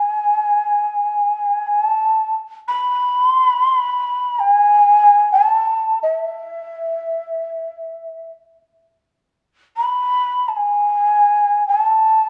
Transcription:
Already playing: G#5
1.67 G#5
1.84 A5
2.68 B5
3.28 C6
3.44 B5
3.62 C6
3.78 B5
4.39 G#5
5.32 G#5
5.44 A5
6.03 E5
9.77 B5
10.48 A5
10.56 G#5
11.67 G#5
11.79 A5

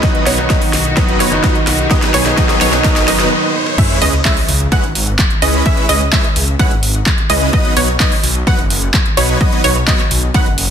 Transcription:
Already playing: B3, riser
0.02 D#3 F#3 B3 D#4 F#4 B4 D#5, kick, snare, closed hi-hat
0.15 closed hi-hat
0.26 B1 F#3 B3 D#4 B4 C#5, snare, open hi-hat
0.38 D#3 F#3 B3 D#4, closed hi-hat
0.50 F#3 B3 D#4 B4 D#5, kick, snare, closed hi-hat
0.62 open hi-hat
0.73 B1, snare, open hi-hat
0.85 closed hi-hat
0.96 D#3 F#3 B3 D#4 B4 D#5, kick, snare, closed hi-hat
1.09 F#1, closed hi-hat
1.20 F#1 F#3 B3 D#4 B4 C#5, snare, open hi-hat
1.31 D#3 F#3 B3 D#4, closed hi-hat
1.44 F#3 B3 D#4 B4 D#5, kick, snare, closed hi-hat
1.55 closed hi-hat
1.67 B1, snare, open hi-hat
1.79 closed hi-hat
1.90 D#3 F#3 B3 D#4 G#4 B4 D#5, kick, snare, closed hi-hat
2.02 snare, closed hi-hat
2.14 B1 F#3 B3 D#4 B4 C#5, snare, open hi-hat
2.25 D#3 F#3 B3 D#4, snare
2.37 D#3 F#3 B3 D#4 B4 D#5, kick, snare, closed hi-hat
2.49 snare, closed hi-hat
2.61 B1 F#3 B3 D#4 B4 C#5, snare, open hi-hat
2.72 D#3 F#3 B3 D#4, snare, closed hi-hat
2.84 D#3 F#3 B3 D#4 B4 D#5, kick, snare, closed hi-hat
2.96 F#1, snare, closed hi-hat
3.07 F#1 D#3 F#3 B3 D#4 B4 D#5, snare, open hi-hat
3.20 snare
3.31 high tom
3.43 high tom
3.66 mid tom
3.78 G#3 C#4 E4 B4 E5, kick, closed hi-hat, crash, sub drop
3.90 closed hi-hat
4.01 C#2 G#3 C#4 E4 B4 D#5, open hi-hat
4.13 closed hi-hat
4.25 G#3 C#4 E4 B4 E5, kick, clap, closed hi-hat
4.37 open hi-hat
4.48 C#2, open hi-hat
4.60 closed hi-hat
4.72 G#3 C#4 E4 B4 F#5, kick, closed hi-hat
4.83 G#1, closed hi-hat
4.95 G#1, open hi-hat
5.07 closed hi-hat
5.19 kick, clap, closed hi-hat
5.30 closed hi-hat
5.42 C#2 G#3 C#4 E4 B4 D#5, open hi-hat
5.54 closed hi-hat
5.65 G#3 C#4 E4 B4 E5, kick, closed hi-hat
5.77 closed hi-hat
5.89 C#2 G#3 C#4 E4 B4 D#5, open hi-hat
6.01 closed hi-hat
6.12 G#3 C#4 E4 B4 E5, kick, clap, closed hi-hat
6.24 closed hi-hat
6.36 C#2, open hi-hat
6.48 closed hi-hat
6.59 G#3 C#4 E4 B4 F#5, kick, closed hi-hat
6.71 G#1, closed hi-hat
6.83 G#1, open hi-hat
6.95 closed hi-hat
7.06 kick, clap, closed hi-hat
7.18 closed hi-hat
7.30 C#2 G#3 C#4 E4 B4 D#5, open hi-hat
7.41 closed hi-hat
7.53 F#3 B3 D#4 B4 D#5, kick, closed hi-hat
7.65 closed hi-hat
7.76 B1 F#3 B3 D#4 B4 C#5, open hi-hat
7.88 closed hi-hat
8.00 F#3 B3 D#4 B4 D#5, kick, clap, closed hi-hat
8.12 open hi-hat
8.23 B1, open hi-hat
8.35 closed hi-hat
8.47 F#3 B3 D#4 B4 F#5, kick, closed hi-hat
8.59 F#1, closed hi-hat
8.70 F#1, open hi-hat
8.82 closed hi-hat
8.94 kick, clap, closed hi-hat
9.06 closed hi-hat
9.17 B1 F#3 B3 D#4 B4 C#5, open hi-hat
9.41 F#3 B3 D#4 B4 D#5, kick, closed hi-hat
9.52 closed hi-hat
9.64 B1 F#3 B3 D#4 B4 C#5, open hi-hat
9.76 closed hi-hat
9.88 F#3 B3 D#4 B4 D#5, kick, clap, closed hi-hat
9.99 clap, closed hi-hat
10.11 B1, open hi-hat
10.23 closed hi-hat
10.34 F#3 B3 D#4 B4 F#5, kick, closed hi-hat
10.46 F#1, closed hi-hat
10.58 F#1, open hi-hat

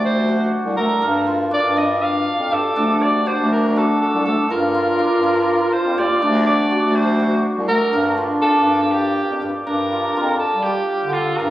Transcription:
Already playing: D2 D4 F#4 A#4
0.05 C5
0.28 F#4
0.65 C2
0.77 D2 A4 A#4
1.02 G2 A#4
1.27 F4
1.51 D4 D5
1.64 G2
1.76 D4 D#5
2.02 F5
2.39 F2
2.51 G2 G4 A4
2.76 D2 D4
3.01 F#4 D5
3.26 F#4 C5
3.39 D2
3.52 A#4
3.76 F#4 A4
4.01 A4
4.14 C2
4.25 D2 A4
4.50 G2 F4 A#4
4.75 F4
4.99 D4
5.12 G2
5.23 D4
5.73 C5
5.85 F2
5.98 D#2 G4 D5
6.21 D2 D4
6.46 F#4 D5
6.71 F#4
6.83 D2
6.95 C5
7.20 F#4
7.57 C2
7.68 D2 A4 A#4
7.92 G2 D4 A#4
8.17 F4
8.42 D4 A4
8.56 G2
8.67 D4
8.91 G4
9.30 F2
9.42 G2 G4
9.67 G2 D4 A#4
9.92 F4
10.17 F2 F4
10.39 A4
10.55 G3
10.63 G4
11.03 D3
11.13 F4 A4
11.37 G2 A#4

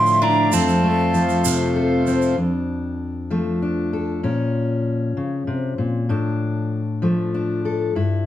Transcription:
Already playing: A2 D3 F3 A3 E4 D5 C6
0.06 shaker
0.22 D4 E4 A#5
0.52 F2 A3 C4 F4 C5 A5, shaker
0.68 shaker
0.84 A3
1.14 F3, shaker
1.29 shaker
1.45 C3, shaker
1.76 A4
2.07 C4, shaker
2.22 shaker
2.37 F2 D4
3.30 F3 A3
3.62 D4
3.93 A4
4.23 A#2 C#4
5.17 C#3
5.47 C3
5.78 A#2
6.09 A2 D4
7.02 F3 A3
7.34 D4
7.65 A4
7.95 G2 E4

